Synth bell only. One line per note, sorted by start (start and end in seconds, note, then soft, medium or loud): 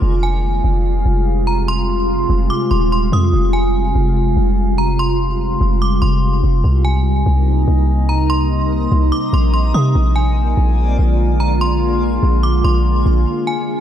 0.23 1.43 G#5 medium
1.47 1.67 A#5 medium
1.68 2.47 C6 loud
2.50 2.70 D6 medium
2.71 2.91 C6 medium
2.92 3.12 C6 medium
3.13 3.32 D#6 medium
3.53 4.74 G#5 medium
4.78 4.98 A#5 medium
4.99 5.78 C6 loud
5.82 6.01 D6 medium
6.02 6.22 C6 medium
6.85 8.05 G#5 medium
8.09 8.29 A#5 medium
8.30 9.08 C6 loud
9.12 9.32 D6 medium
9.34 9.52 C6 medium
9.54 9.73 C6 medium
9.74 9.94 D#6 medium
10.16 11.36 G#5 medium
11.40 11.60 A#5 medium
11.61 12.40 C6 loud
12.43 12.63 D6 medium
12.64 12.84 C6 medium
13.47 13.80 G#5 medium